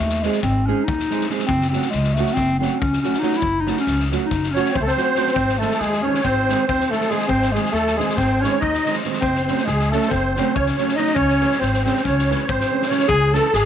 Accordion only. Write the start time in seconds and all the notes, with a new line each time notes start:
4.54 C#5
4.73 C5
4.82 A4
4.87 C5
5.32 C5
5.58 A4
5.78 G#4
6.03 C#5
6.23 C5
6.68 C5
6.90 A4
7.09 G#4
7.28 C5
7.53 G#4
7.72 A4
7.96 G#4
8.16 C5
8.41 C#5
8.60 D#5
9.21 C5
9.46 C5
9.65 G#4
9.91 A4
10.08 C5
10.34 C5
10.54 C#5
10.76 C#5
10.95 D#5
11.15 C#5
11.59 C5
11.85 C5
12.06 C#5
12.42 C#5
12.48 C5
12.89 C#5
13.08 G#4
13.33 A4
13.53 G#4